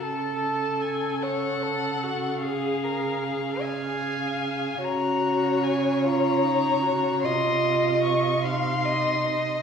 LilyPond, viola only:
\new Staff \with { instrumentName = "Viola" } { \time 6/8 \key des \major \tempo 4. = 50 a'4. a'4. | aes'4. aes'4. | ges'4. f'8 ees'8 ges'8 | f'4. ees'4. | }